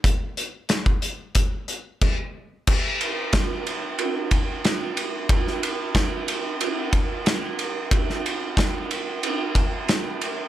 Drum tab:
CC |------------x---|x---------------|----------------|----------------|
RD |----------------|--x-x-x-x-x-x-x-|x-x-x-x-x-x-x-x-|x-x-x-x-x-x-x-x-|
HH |x-x-x-x-x-x-----|----------------|----------------|----------------|
SD |----o-----------|----o-------o---|-o--o-------o---|-o--o-------o---|
BD |o----o--o---o---|o---o-----o-----|o---o-----o-----|o---o-----o-----|